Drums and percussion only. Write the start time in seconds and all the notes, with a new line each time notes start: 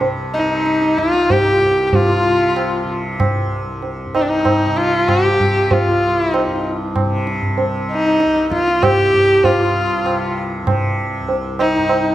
0.01 tabla tin
0.66 tabla te
0.82 tabla te
0.98 tabla ke
1.14 tabla te
1.30 tabla tin, tabla ge
1.93 tabla tin, tabla ge
2.56 tabla na
3.20 tabla na, tabla ge
3.82 tabla tin
4.15 tabla na
4.45 tabla na, tabla ge
4.77 tabla te
5.08 tabla na, tabla ge
5.40 tabla ge
5.71 tabla tin, tabla ge
6.34 tabla na
6.96 tabla na, tabla ge
7.27 tabla te
7.42 tabla ge
7.58 tabla tin
8.20 tabla te
8.36 tabla te
8.51 tabla ke
8.68 tabla te
8.83 tabla na, tabla ge
9.13 tabla ge
9.44 tabla tin, tabla ge
10.06 tabla na
10.67 tabla na, tabla ge
11.29 tabla tin
11.59 tabla na
11.89 tabla na